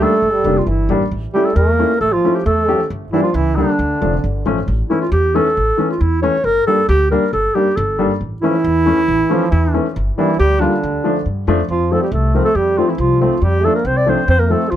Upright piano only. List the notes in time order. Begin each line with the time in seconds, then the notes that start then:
0.01 G3 A#3 D4
0.45 G3 A#3 D4
0.90 G3 A#3 D4
1.35 A3 C#4 E4
1.79 A3 C#4 E4
2.24 A3 C#4 E4
2.68 A3 C#4 G4
3.13 G3 A#3 D4
3.57 G3 A#3 D4
4.01 F3 A3 D4
4.46 F3 A3 C#4
4.90 E3 A3 C#4
5.34 E3 A3 C#4
5.78 E3 A3 C#4
6.22 E3 A3 C#4
6.67 G3 A#3 D4
7.11 G3 A#3 D4
7.55 G3 A#3 D4
7.99 G3 A#3 D4
8.43 E3 A3 C#4
8.86 E3 A3 C#4
9.30 E3 A3 C#4
9.74 E3 A3 C#4
10.18 G3 A#3 D4
10.61 G3 A#3 F4
11.04 F3 A3 D4
11.48 F3 A3 D4
11.92 F3 A3 C4
12.34 F3 A3 C4
12.78 F3 A3 C4
13.21 F3 A3 C4
13.64 F3 A3 D4
14.06 F3 A3 D4
14.50 F3 A3 C4